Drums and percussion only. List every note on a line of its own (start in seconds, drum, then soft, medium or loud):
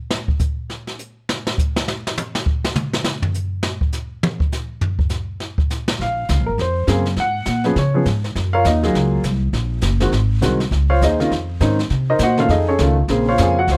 0.10 snare loud
0.28 kick medium
0.39 kick medium
0.39 hi-hat pedal medium
0.70 snare soft
0.87 snare soft
0.99 hi-hat pedal medium
1.29 snare loud
1.47 snare loud
1.58 kick medium
1.58 hi-hat pedal medium
1.76 snare loud
1.88 snare loud
2.07 snare loud
2.17 hi-hat pedal medium
2.17 high tom medium
2.35 snare loud
2.46 kick medium
2.64 snare loud
2.75 hi-hat pedal medium
2.75 mid tom loud
2.93 snare medium
3.04 snare loud
3.22 floor tom loud
3.34 hi-hat pedal medium
3.63 snare loud
3.81 kick medium
3.93 snare soft
3.93 hi-hat pedal medium
4.23 high tom loud
4.40 kick medium
4.52 snare soft
4.52 hi-hat pedal medium
4.81 floor tom loud
4.99 kick medium
5.09 snare soft
5.09 hi-hat pedal medium
5.40 snare soft
5.58 kick medium
5.70 snare soft
5.70 hi-hat pedal medium
5.88 snare loud
6.00 brush sweep soft
6.00 kick soft
6.00 snare soft
6.29 kick soft
6.29 snare medium
6.29 hi-hat pedal medium
6.58 brush sweep medium
6.58 kick soft
6.58 snare soft
6.87 kick soft
6.87 snare medium
6.87 hi-hat pedal medium
7.05 snare soft
7.16 brush sweep soft
7.16 kick soft
7.16 snare soft
7.45 kick soft
7.45 snare medium
7.45 hi-hat pedal medium
7.64 snare soft
7.76 brush sweep soft
7.76 kick soft
7.76 snare soft
8.05 kick soft
8.05 snare medium
8.05 hi-hat pedal soft
8.24 snare soft
8.35 brush sweep soft
8.35 kick soft
8.35 snare soft
8.64 kick soft
8.64 snare medium
8.64 hi-hat pedal medium
8.83 snare soft
8.94 brush sweep soft
8.94 kick soft
8.94 snare soft
9.24 kick soft
9.24 snare medium
9.24 hi-hat pedal soft
9.53 brush sweep medium
9.53 kick soft
9.53 snare soft
9.81 kick soft
9.81 snare medium
9.81 hi-hat pedal medium
10.00 snare soft
10.12 brush sweep medium
10.12 kick soft
10.12 snare soft
10.42 kick soft
10.42 snare medium
10.42 hi-hat pedal medium
10.60 snare soft
10.71 brush sweep soft
10.71 kick soft
10.71 snare soft
11.01 kick soft
11.01 snare medium
11.01 hi-hat pedal medium
11.20 snare soft
11.31 brush sweep medium
11.31 kick soft
11.31 snare soft
11.60 kick soft
11.60 snare medium
11.60 hi-hat pedal medium
11.79 snare soft
11.90 brush sweep soft
11.90 kick soft
11.90 snare soft
12.19 kick soft
12.19 snare medium
12.19 hi-hat pedal medium
12.37 snare soft
12.49 brush sweep soft
12.49 kick soft
12.49 snare soft
12.78 kick soft
12.78 snare medium
12.78 hi-hat pedal soft
13.08 brush sweep soft
13.08 kick soft
13.08 snare soft
13.38 kick soft
13.38 snare medium
13.38 hi-hat pedal medium
13.68 brush sweep soft
13.68 kick soft
13.68 snare soft